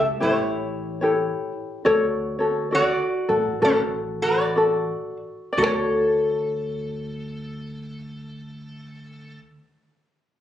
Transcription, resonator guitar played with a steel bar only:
0, 0, Header, 1, 2, 480
1, 0, Start_track
1, 0, Key_signature, 2, "major"
1, 0, Tempo, 806452
1, 606, Tempo, 848656
1, 1077, Time_signature, 4, 2, 24, 8
1, 1566, Tempo, 924499
1, 2526, Tempo, 1003344
1, 3006, Tempo, 1036269
1, 5246, End_track
2, 0, Start_track
2, 0, Title_t, "Resonator guitar played with a steel bar"
2, 0, Program_c, 0, 25
2, 135, Note_on_c, 0, 73, 73
2, 141, Note_on_c, 0, 64, 58
2, 886, Note_off_c, 0, 73, 0
2, 889, Note_off_c, 0, 64, 0
2, 1582, Note_on_c, 0, 66, 80
2, 1582, Note_on_c, 0, 74, 95
2, 2022, Note_off_c, 0, 66, 0
2, 2049, Note_on_c, 0, 69, 81
2, 2053, Note_on_c, 0, 61, 64
2, 2056, Note_off_c, 0, 74, 0
2, 2131, Note_off_c, 0, 69, 0
2, 2134, Note_off_c, 0, 61, 0
2, 2348, Note_on_c, 0, 74, 87
2, 2351, Note_on_c, 0, 66, 69
2, 2811, Note_off_c, 0, 74, 0
2, 2812, Note_off_c, 0, 66, 0
2, 3013, Note_on_c, 0, 69, 80
2, 4774, Note_off_c, 0, 69, 0
2, 5246, End_track
0, 0, End_of_file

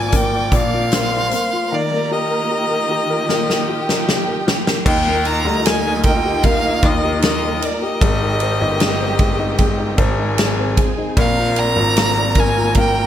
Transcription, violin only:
0, 0, Header, 1, 2, 480
1, 0, Start_track
1, 0, Key_signature, -3, "major"
1, 0, Tempo, 789474
1, 1036, Time_signature, 4, 2, 24, 8
1, 7944, End_track
2, 0, Start_track
2, 0, Title_t, "Violin"
2, 0, Program_c, 0, 40
2, 0, Note_on_c, 0, 80, 97
2, 95, Note_on_c, 0, 79, 98
2, 104, Note_off_c, 0, 80, 0
2, 336, Note_on_c, 0, 77, 106
2, 345, Note_off_c, 0, 79, 0
2, 1059, Note_on_c, 0, 74, 91
2, 1068, Note_off_c, 0, 77, 0
2, 1288, Note_off_c, 0, 74, 0
2, 1292, Note_on_c, 0, 75, 96
2, 2700, Note_off_c, 0, 75, 0
2, 2960, Note_on_c, 0, 79, 108
2, 3201, Note_on_c, 0, 82, 101
2, 3210, Note_off_c, 0, 79, 0
2, 3443, Note_on_c, 0, 80, 100
2, 3452, Note_off_c, 0, 82, 0
2, 3677, Note_off_c, 0, 80, 0
2, 3680, Note_on_c, 0, 79, 89
2, 3913, Note_on_c, 0, 77, 102
2, 3922, Note_off_c, 0, 79, 0
2, 4165, Note_on_c, 0, 75, 98
2, 4175, Note_off_c, 0, 77, 0
2, 4397, Note_off_c, 0, 75, 0
2, 4401, Note_on_c, 0, 75, 90
2, 4651, Note_on_c, 0, 74, 84
2, 4661, Note_off_c, 0, 75, 0
2, 4760, Note_off_c, 0, 74, 0
2, 4764, Note_on_c, 0, 75, 86
2, 6175, Note_off_c, 0, 75, 0
2, 6802, Note_on_c, 0, 77, 108
2, 7044, Note_on_c, 0, 82, 116
2, 7053, Note_off_c, 0, 77, 0
2, 7536, Note_on_c, 0, 80, 110
2, 7545, Note_off_c, 0, 82, 0
2, 7766, Note_off_c, 0, 80, 0
2, 7775, Note_on_c, 0, 79, 110
2, 7944, Note_off_c, 0, 79, 0
2, 7944, End_track
0, 0, End_of_file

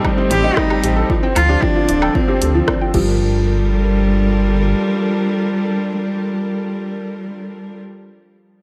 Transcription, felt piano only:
0, 0, Header, 1, 2, 480
1, 0, Start_track
1, 0, Key_signature, -2, "minor"
1, 0, Tempo, 526316
1, 1002, Time_signature, 4, 2, 24, 8
1, 7863, End_track
2, 0, Start_track
2, 0, Title_t, "Felt piano"
2, 0, Program_c, 0, 0
2, 0, Control_c, 0, 64, 127
2, 0, Note_on_c, 0, 55, 100
2, 0, Note_on_c, 0, 60, 107
2, 0, Note_on_c, 0, 63, 109
2, 0, Note_on_c, 0, 67, 75
2, 0, Note_on_c, 0, 69, 80
2, 45, Note_off_c, 0, 55, 0
2, 45, Note_on_c, 0, 55, 92
2, 158, Note_off_c, 0, 55, 0
2, 162, Note_off_c, 0, 60, 0
2, 162, Note_on_c, 0, 60, 97
2, 276, Note_off_c, 0, 60, 0
2, 279, Note_on_c, 0, 55, 92
2, 395, Note_off_c, 0, 55, 0
2, 398, Note_off_c, 0, 63, 0
2, 398, Note_on_c, 0, 63, 101
2, 514, Note_off_c, 0, 63, 0
2, 518, Note_on_c, 0, 55, 98
2, 634, Note_off_c, 0, 55, 0
2, 641, Note_off_c, 0, 67, 0
2, 641, Note_on_c, 0, 67, 80
2, 710, Note_off_c, 0, 67, 0
2, 762, Note_on_c, 0, 67, 75
2, 831, Note_off_c, 0, 67, 0
2, 879, Note_off_c, 0, 69, 0
2, 879, Note_on_c, 0, 69, 81
2, 995, Note_off_c, 0, 69, 0
2, 1002, Note_on_c, 0, 53, 86
2, 1013, Control_c, 0, 64, 0
2, 1117, Note_off_c, 0, 53, 0
2, 1120, Note_on_c, 0, 60, 97
2, 1179, Control_c, 0, 64, 127
2, 1235, Note_off_c, 0, 60, 0
2, 1242, Note_on_c, 0, 53, 97
2, 1356, Note_off_c, 0, 53, 0
2, 1358, Note_on_c, 0, 62, 102
2, 1474, Note_off_c, 0, 62, 0
2, 1475, Note_on_c, 0, 53, 99
2, 1593, Note_off_c, 0, 53, 0
2, 1599, Note_on_c, 0, 65, 76
2, 1669, Note_off_c, 0, 65, 0
2, 1717, Note_on_c, 0, 65, 76
2, 1788, Note_off_c, 0, 65, 0
2, 1838, Note_on_c, 0, 69, 78
2, 1955, Note_off_c, 0, 69, 0
2, 1958, Note_on_c, 0, 53, 85
2, 2074, Note_off_c, 0, 53, 0
2, 2079, Note_on_c, 0, 60, 97
2, 2195, Note_off_c, 0, 60, 0
2, 2201, Note_on_c, 0, 69, 68
2, 2316, Note_off_c, 0, 69, 0
2, 2320, Note_on_c, 0, 53, 100
2, 2425, Note_off_c, 0, 53, 0
2, 2439, Note_on_c, 0, 53, 84
2, 2548, Note_off_c, 0, 53, 0
2, 2561, Note_on_c, 0, 53, 73
2, 2630, Note_off_c, 0, 53, 0
2, 2681, Note_on_c, 0, 53, 92
2, 2693, Control_c, 0, 64, 0
2, 2789, Control_c, 0, 64, 127
2, 2935, Control_c, 0, 64, 0
2, 3111, Control_c, 0, 64, 127
2, 3128, Note_off_c, 0, 53, 0
2, 7863, End_track
0, 0, End_of_file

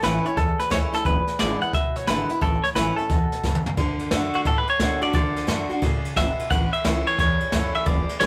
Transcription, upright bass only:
0, 0, Header, 1, 3, 480
1, 0, Start_track
1, 0, Key_signature, 3, "major"
1, 0, Tempo, 341103
1, 1479, Time_signature, 4, 2, 24, 8
1, 11629, End_track
2, 0, Start_track
2, 0, Title_t, "Upright bass"
2, 0, Program_c, 0, 32
2, 45, Note_on_c, 0, 33, 91
2, 288, Note_off_c, 0, 33, 0
2, 519, Note_on_c, 0, 40, 95
2, 765, Note_off_c, 0, 40, 0
2, 1002, Note_on_c, 0, 39, 91
2, 1247, Note_off_c, 0, 39, 0
2, 1481, Note_on_c, 0, 28, 97
2, 1726, Note_off_c, 0, 28, 0
2, 1973, Note_on_c, 0, 32, 95
2, 2213, Note_off_c, 0, 32, 0
2, 2438, Note_on_c, 0, 38, 91
2, 2685, Note_off_c, 0, 38, 0
2, 2764, Note_on_c, 0, 28, 94
2, 2892, Note_off_c, 0, 28, 0
2, 2918, Note_on_c, 0, 32, 88
2, 3165, Note_off_c, 0, 32, 0
2, 3404, Note_on_c, 0, 33, 98
2, 3649, Note_off_c, 0, 33, 0
2, 3868, Note_on_c, 0, 33, 92
2, 4118, Note_off_c, 0, 33, 0
2, 4355, Note_on_c, 0, 40, 90
2, 4603, Note_off_c, 0, 40, 0
2, 4839, Note_on_c, 0, 42, 94
2, 5086, Note_off_c, 0, 42, 0
2, 5310, Note_on_c, 0, 38, 100
2, 5601, Note_off_c, 0, 38, 0
2, 5796, Note_on_c, 0, 42, 90
2, 6085, Note_off_c, 0, 42, 0
2, 6268, Note_on_c, 0, 45, 93
2, 6560, Note_off_c, 0, 45, 0
2, 6754, Note_on_c, 0, 47, 97
2, 7043, Note_off_c, 0, 47, 0
2, 7232, Note_on_c, 0, 38, 99
2, 7522, Note_off_c, 0, 38, 0
2, 7704, Note_on_c, 0, 42, 92
2, 7998, Note_off_c, 0, 42, 0
2, 8194, Note_on_c, 0, 45, 92
2, 8483, Note_off_c, 0, 45, 0
2, 8676, Note_on_c, 0, 32, 94
2, 8964, Note_off_c, 0, 32, 0
2, 9160, Note_on_c, 0, 33, 97
2, 9446, Note_off_c, 0, 33, 0
2, 9632, Note_on_c, 0, 37, 95
2, 9921, Note_off_c, 0, 37, 0
2, 10114, Note_on_c, 0, 40, 93
2, 10402, Note_off_c, 0, 40, 0
2, 10592, Note_on_c, 0, 42, 88
2, 10881, Note_off_c, 0, 42, 0
2, 11071, Note_on_c, 0, 28, 91
2, 11360, Note_off_c, 0, 28, 0
2, 11554, Note_on_c, 0, 32, 91
2, 11629, Note_off_c, 0, 32, 0
2, 11629, End_track
3, 0, Start_track
3, 0, Title_t, "Muted upright bass strokes"
3, 839, Note_on_c, 9, 29, 72
3, 979, Note_off_c, 9, 29, 0
3, 1321, Note_on_c, 9, 29, 72
3, 1462, Note_off_c, 9, 29, 0
3, 1801, Note_on_c, 9, 29, 67
3, 1941, Note_off_c, 9, 29, 0
3, 2283, Note_on_c, 9, 29, 76
3, 2423, Note_off_c, 9, 29, 0
3, 3237, Note_on_c, 9, 29, 71
3, 3378, Note_off_c, 9, 29, 0
3, 3706, Note_on_c, 9, 29, 70
3, 3847, Note_off_c, 9, 29, 0
3, 4190, Note_on_c, 9, 29, 73
3, 4330, Note_off_c, 9, 29, 0
3, 4664, Note_on_c, 9, 29, 74
3, 4805, Note_off_c, 9, 29, 0
3, 5141, Note_on_c, 9, 29, 68
3, 5282, Note_off_c, 9, 29, 0
3, 5632, Note_on_c, 9, 29, 71
3, 5773, Note_off_c, 9, 29, 0
3, 6113, Note_on_c, 9, 29, 69
3, 6254, Note_off_c, 9, 29, 0
3, 6589, Note_on_c, 9, 29, 74
3, 6730, Note_off_c, 9, 29, 0
3, 7074, Note_on_c, 9, 29, 68
3, 7215, Note_off_c, 9, 29, 0
3, 7549, Note_on_c, 9, 29, 69
3, 7690, Note_off_c, 9, 29, 0
3, 8021, Note_on_c, 9, 29, 79
3, 8161, Note_off_c, 9, 29, 0
3, 8505, Note_on_c, 9, 29, 70
3, 8645, Note_off_c, 9, 29, 0
3, 8984, Note_on_c, 9, 29, 71
3, 9125, Note_off_c, 9, 29, 0
3, 9461, Note_on_c, 9, 29, 75
3, 9601, Note_off_c, 9, 29, 0
3, 10440, Note_on_c, 9, 29, 68
3, 10581, Note_off_c, 9, 29, 0
3, 10921, Note_on_c, 9, 29, 73
3, 11061, Note_off_c, 9, 29, 0
3, 11629, End_track
0, 0, End_of_file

